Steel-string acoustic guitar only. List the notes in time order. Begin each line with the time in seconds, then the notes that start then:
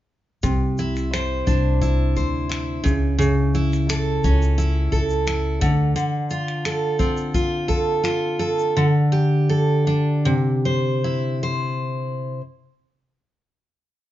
0.43 C3
0.79 E4
1.13 C5
1.47 D4
1.81 E4
2.16 C5
2.49 E4
2.84 C#3
3.18 C#3
3.55 E4
3.89 A4
4.24 C#4
4.58 E4
4.92 A4
5.27 E4
5.61 D3
5.96 D3
6.31 F4
6.65 A4
6.99 C4
7.34 F4
7.68 A4
8.03 F4
8.39 A4
8.77 D3
9.12 G4
9.49 A4
9.87 D4
10.25 C3
10.65 C5
11.04 E4
11.43 C5